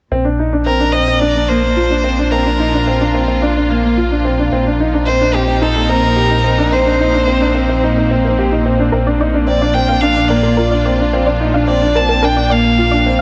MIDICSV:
0, 0, Header, 1, 6, 480
1, 0, Start_track
1, 0, Key_signature, -2, "major"
1, 0, Tempo, 550459
1, 105, Time_signature, 4, 2, 24, 8
1, 11523, End_track
2, 0, Start_track
2, 0, Title_t, "Synth arpeggio sound"
2, 0, Program_c, 0, 84
2, 7780, Note_on_c, 0, 70, 86
2, 7825, Note_off_c, 0, 70, 0
2, 7907, Note_on_c, 0, 74, 73
2, 7969, Note_off_c, 0, 74, 0
2, 8028, Note_on_c, 0, 74, 64
2, 8069, Note_off_c, 0, 74, 0
2, 8385, Note_on_c, 0, 74, 72
2, 8448, Note_off_c, 0, 74, 0
2, 8622, Note_on_c, 0, 77, 62
2, 8648, Note_off_c, 0, 77, 0
2, 8983, Note_on_c, 0, 70, 64
2, 9009, Note_off_c, 0, 70, 0
2, 9095, Note_on_c, 0, 70, 65
2, 9142, Note_off_c, 0, 70, 0
2, 9217, Note_on_c, 0, 70, 91
2, 9263, Note_off_c, 0, 70, 0
2, 9342, Note_on_c, 0, 74, 67
2, 9406, Note_off_c, 0, 74, 0
2, 9464, Note_on_c, 0, 74, 71
2, 9507, Note_off_c, 0, 74, 0
2, 9823, Note_on_c, 0, 74, 67
2, 9887, Note_off_c, 0, 74, 0
2, 10062, Note_on_c, 0, 77, 69
2, 10089, Note_off_c, 0, 77, 0
2, 10422, Note_on_c, 0, 70, 71
2, 10449, Note_off_c, 0, 70, 0
2, 10540, Note_on_c, 0, 70, 62
2, 10585, Note_off_c, 0, 70, 0
2, 10660, Note_on_c, 0, 70, 86
2, 10704, Note_off_c, 0, 70, 0
2, 10783, Note_on_c, 0, 74, 67
2, 10847, Note_off_c, 0, 74, 0
2, 10901, Note_on_c, 0, 74, 67
2, 10945, Note_off_c, 0, 74, 0
2, 11261, Note_on_c, 0, 74, 68
2, 11326, Note_off_c, 0, 74, 0
2, 11523, End_track
3, 0, Start_track
3, 0, Title_t, "Violin"
3, 0, Program_c, 1, 40
3, 575, Note_on_c, 1, 70, 77
3, 807, Note_on_c, 1, 75, 77
3, 820, Note_off_c, 1, 70, 0
3, 1042, Note_on_c, 1, 74, 82
3, 1055, Note_off_c, 1, 75, 0
3, 1294, Note_on_c, 1, 72, 84
3, 1307, Note_off_c, 1, 74, 0
3, 2020, Note_on_c, 1, 70, 69
3, 2033, Note_off_c, 1, 72, 0
3, 2983, Note_off_c, 1, 70, 0
3, 4420, Note_on_c, 1, 72, 91
3, 4662, Note_on_c, 1, 67, 78
3, 4675, Note_off_c, 1, 72, 0
3, 4902, Note_on_c, 1, 69, 79
3, 4915, Note_off_c, 1, 67, 0
3, 5135, Note_on_c, 1, 70, 92
3, 5148, Note_off_c, 1, 69, 0
3, 5865, Note_on_c, 1, 72, 78
3, 5878, Note_off_c, 1, 70, 0
3, 6825, Note_off_c, 1, 72, 0
3, 8266, Note_on_c, 1, 74, 79
3, 8494, Note_on_c, 1, 79, 83
3, 8507, Note_off_c, 1, 74, 0
3, 8731, Note_on_c, 1, 77, 84
3, 8744, Note_off_c, 1, 79, 0
3, 8972, Note_on_c, 1, 74, 73
3, 8985, Note_off_c, 1, 77, 0
3, 9698, Note_off_c, 1, 74, 0
3, 10184, Note_on_c, 1, 74, 82
3, 10433, Note_on_c, 1, 81, 84
3, 10446, Note_off_c, 1, 74, 0
3, 10676, Note_on_c, 1, 79, 84
3, 10689, Note_off_c, 1, 81, 0
3, 10918, Note_on_c, 1, 77, 85
3, 10932, Note_off_c, 1, 79, 0
3, 11523, Note_off_c, 1, 77, 0
3, 11523, End_track
4, 0, Start_track
4, 0, Title_t, "Grand piano"
4, 0, Program_c, 2, 0
4, 102, Note_on_c, 2, 60, 73
4, 211, Note_off_c, 2, 60, 0
4, 215, Note_on_c, 2, 62, 56
4, 328, Note_off_c, 2, 62, 0
4, 342, Note_on_c, 2, 63, 61
4, 451, Note_off_c, 2, 63, 0
4, 461, Note_on_c, 2, 62, 55
4, 571, Note_off_c, 2, 62, 0
4, 578, Note_on_c, 2, 60, 65
4, 689, Note_off_c, 2, 60, 0
4, 699, Note_on_c, 2, 62, 59
4, 809, Note_off_c, 2, 62, 0
4, 819, Note_on_c, 2, 60, 64
4, 926, Note_off_c, 2, 60, 0
4, 939, Note_on_c, 2, 60, 57
4, 1050, Note_off_c, 2, 60, 0
4, 1058, Note_on_c, 2, 62, 73
4, 1169, Note_off_c, 2, 62, 0
4, 1182, Note_on_c, 2, 62, 57
4, 1291, Note_off_c, 2, 62, 0
4, 1300, Note_on_c, 2, 58, 69
4, 1401, Note_off_c, 2, 58, 0
4, 1414, Note_on_c, 2, 58, 55
4, 1527, Note_off_c, 2, 58, 0
4, 1540, Note_on_c, 2, 65, 67
4, 1650, Note_off_c, 2, 65, 0
4, 1660, Note_on_c, 2, 62, 53
4, 1770, Note_off_c, 2, 62, 0
4, 1779, Note_on_c, 2, 60, 68
4, 1890, Note_off_c, 2, 60, 0
4, 1906, Note_on_c, 2, 62, 55
4, 2014, Note_off_c, 2, 62, 0
4, 2024, Note_on_c, 2, 60, 70
4, 2132, Note_off_c, 2, 60, 0
4, 2143, Note_on_c, 2, 62, 53
4, 2252, Note_off_c, 2, 62, 0
4, 2265, Note_on_c, 2, 63, 64
4, 2373, Note_off_c, 2, 63, 0
4, 2384, Note_on_c, 2, 62, 58
4, 2492, Note_off_c, 2, 62, 0
4, 2505, Note_on_c, 2, 60, 66
4, 2613, Note_off_c, 2, 60, 0
4, 2624, Note_on_c, 2, 62, 63
4, 2732, Note_off_c, 2, 62, 0
4, 2740, Note_on_c, 2, 60, 62
4, 2848, Note_off_c, 2, 60, 0
4, 2861, Note_on_c, 2, 60, 57
4, 2970, Note_off_c, 2, 60, 0
4, 2983, Note_on_c, 2, 62, 72
4, 3092, Note_off_c, 2, 62, 0
4, 3107, Note_on_c, 2, 62, 60
4, 3214, Note_off_c, 2, 62, 0
4, 3226, Note_on_c, 2, 58, 66
4, 3331, Note_off_c, 2, 58, 0
4, 3344, Note_on_c, 2, 58, 57
4, 3453, Note_off_c, 2, 58, 0
4, 3465, Note_on_c, 2, 65, 70
4, 3573, Note_off_c, 2, 65, 0
4, 3586, Note_on_c, 2, 62, 58
4, 3693, Note_off_c, 2, 62, 0
4, 3704, Note_on_c, 2, 60, 65
4, 3813, Note_off_c, 2, 60, 0
4, 3828, Note_on_c, 2, 62, 58
4, 3934, Note_off_c, 2, 62, 0
4, 3946, Note_on_c, 2, 60, 74
4, 4053, Note_off_c, 2, 60, 0
4, 4069, Note_on_c, 2, 62, 56
4, 4175, Note_off_c, 2, 62, 0
4, 4186, Note_on_c, 2, 63, 64
4, 4293, Note_off_c, 2, 63, 0
4, 4302, Note_on_c, 2, 62, 58
4, 4411, Note_off_c, 2, 62, 0
4, 4427, Note_on_c, 2, 60, 69
4, 4534, Note_off_c, 2, 60, 0
4, 4543, Note_on_c, 2, 62, 67
4, 4652, Note_off_c, 2, 62, 0
4, 4661, Note_on_c, 2, 60, 69
4, 4764, Note_off_c, 2, 60, 0
4, 4777, Note_on_c, 2, 60, 60
4, 4888, Note_off_c, 2, 60, 0
4, 4896, Note_on_c, 2, 63, 78
4, 5005, Note_off_c, 2, 63, 0
4, 5018, Note_on_c, 2, 63, 60
4, 5129, Note_off_c, 2, 63, 0
4, 5140, Note_on_c, 2, 60, 66
4, 5242, Note_off_c, 2, 60, 0
4, 5255, Note_on_c, 2, 60, 61
4, 5367, Note_off_c, 2, 60, 0
4, 5374, Note_on_c, 2, 67, 70
4, 5487, Note_off_c, 2, 67, 0
4, 5494, Note_on_c, 2, 63, 58
4, 5607, Note_off_c, 2, 63, 0
4, 5616, Note_on_c, 2, 60, 61
4, 5728, Note_off_c, 2, 60, 0
4, 5739, Note_on_c, 2, 62, 64
4, 5850, Note_off_c, 2, 62, 0
4, 5861, Note_on_c, 2, 60, 73
4, 5970, Note_off_c, 2, 60, 0
4, 5982, Note_on_c, 2, 62, 57
4, 6091, Note_off_c, 2, 62, 0
4, 6107, Note_on_c, 2, 63, 66
4, 6214, Note_off_c, 2, 63, 0
4, 6223, Note_on_c, 2, 62, 56
4, 6332, Note_off_c, 2, 62, 0
4, 6343, Note_on_c, 2, 60, 67
4, 6452, Note_off_c, 2, 60, 0
4, 6461, Note_on_c, 2, 62, 68
4, 6571, Note_off_c, 2, 62, 0
4, 6581, Note_on_c, 2, 60, 65
4, 6691, Note_off_c, 2, 60, 0
4, 6708, Note_on_c, 2, 60, 63
4, 6814, Note_off_c, 2, 60, 0
4, 6833, Note_on_c, 2, 63, 70
4, 6937, Note_off_c, 2, 63, 0
4, 6952, Note_on_c, 2, 63, 58
4, 7057, Note_off_c, 2, 63, 0
4, 7072, Note_on_c, 2, 60, 68
4, 7177, Note_off_c, 2, 60, 0
4, 7193, Note_on_c, 2, 60, 58
4, 7298, Note_off_c, 2, 60, 0
4, 7313, Note_on_c, 2, 67, 66
4, 7417, Note_off_c, 2, 67, 0
4, 7428, Note_on_c, 2, 63, 61
4, 7535, Note_off_c, 2, 63, 0
4, 7548, Note_on_c, 2, 60, 65
4, 7655, Note_off_c, 2, 60, 0
4, 7668, Note_on_c, 2, 62, 62
4, 7775, Note_off_c, 2, 62, 0
4, 7788, Note_on_c, 2, 60, 74
4, 7894, Note_off_c, 2, 60, 0
4, 7907, Note_on_c, 2, 62, 61
4, 8014, Note_off_c, 2, 62, 0
4, 8020, Note_on_c, 2, 63, 66
4, 8130, Note_off_c, 2, 63, 0
4, 8144, Note_on_c, 2, 62, 61
4, 8252, Note_off_c, 2, 62, 0
4, 8261, Note_on_c, 2, 60, 68
4, 8371, Note_off_c, 2, 60, 0
4, 8386, Note_on_c, 2, 62, 63
4, 8494, Note_off_c, 2, 62, 0
4, 8504, Note_on_c, 2, 60, 64
4, 8610, Note_off_c, 2, 60, 0
4, 8623, Note_on_c, 2, 60, 62
4, 8732, Note_off_c, 2, 60, 0
4, 8739, Note_on_c, 2, 62, 78
4, 8847, Note_off_c, 2, 62, 0
4, 8860, Note_on_c, 2, 62, 60
4, 8970, Note_off_c, 2, 62, 0
4, 8984, Note_on_c, 2, 58, 68
4, 9092, Note_off_c, 2, 58, 0
4, 9105, Note_on_c, 2, 58, 62
4, 9213, Note_off_c, 2, 58, 0
4, 9229, Note_on_c, 2, 65, 70
4, 9335, Note_off_c, 2, 65, 0
4, 9353, Note_on_c, 2, 62, 58
4, 9457, Note_off_c, 2, 62, 0
4, 9467, Note_on_c, 2, 60, 62
4, 9574, Note_off_c, 2, 60, 0
4, 9592, Note_on_c, 2, 62, 58
4, 9697, Note_off_c, 2, 62, 0
4, 9708, Note_on_c, 2, 60, 77
4, 9814, Note_off_c, 2, 60, 0
4, 9827, Note_on_c, 2, 62, 57
4, 9934, Note_off_c, 2, 62, 0
4, 9944, Note_on_c, 2, 63, 67
4, 10052, Note_off_c, 2, 63, 0
4, 10062, Note_on_c, 2, 62, 59
4, 10171, Note_off_c, 2, 62, 0
4, 10182, Note_on_c, 2, 60, 70
4, 10291, Note_off_c, 2, 60, 0
4, 10306, Note_on_c, 2, 62, 68
4, 10414, Note_off_c, 2, 62, 0
4, 10427, Note_on_c, 2, 60, 66
4, 10534, Note_off_c, 2, 60, 0
4, 10548, Note_on_c, 2, 60, 65
4, 10654, Note_off_c, 2, 60, 0
4, 10668, Note_on_c, 2, 62, 77
4, 10775, Note_off_c, 2, 62, 0
4, 10789, Note_on_c, 2, 62, 62
4, 10895, Note_off_c, 2, 62, 0
4, 10909, Note_on_c, 2, 58, 69
4, 11012, Note_off_c, 2, 58, 0
4, 11025, Note_on_c, 2, 58, 63
4, 11133, Note_off_c, 2, 58, 0
4, 11149, Note_on_c, 2, 65, 75
4, 11255, Note_off_c, 2, 65, 0
4, 11272, Note_on_c, 2, 62, 64
4, 11376, Note_off_c, 2, 62, 0
4, 11390, Note_on_c, 2, 60, 69
4, 11496, Note_off_c, 2, 60, 0
4, 11523, End_track
5, 0, Start_track
5, 0, Title_t, "String section"
5, 0, Program_c, 3, 48
5, 104, Note_on_c, 3, 46, 52
5, 572, Note_on_c, 3, 58, 57
5, 637, Note_on_c, 3, 62, 53
5, 1834, Note_on_c, 3, 65, 67
5, 3943, Note_off_c, 3, 62, 0
5, 4172, Note_on_c, 3, 63, 73
5, 4876, Note_on_c, 3, 60, 65
5, 5304, Note_off_c, 3, 65, 0
5, 7784, Note_off_c, 3, 63, 0
5, 8381, Note_on_c, 3, 65, 63
5, 8466, Note_off_c, 3, 60, 0
5, 8502, Note_on_c, 3, 62, 57
5, 11523, Note_off_c, 3, 46, 0
5, 11523, Note_off_c, 3, 58, 0
5, 11523, Note_off_c, 3, 62, 0
5, 11523, Note_off_c, 3, 65, 0
5, 11523, End_track
6, 0, Start_track
6, 0, Title_t, "Detuned saw bass"
6, 0, Program_c, 4, 39
6, 97, Note_on_c, 4, 34, 74
6, 3917, Note_off_c, 4, 34, 0
6, 3939, Note_on_c, 4, 34, 82
6, 7758, Note_off_c, 4, 34, 0
6, 7779, Note_on_c, 4, 34, 79
6, 11523, Note_off_c, 4, 34, 0
6, 11523, End_track
0, 0, End_of_file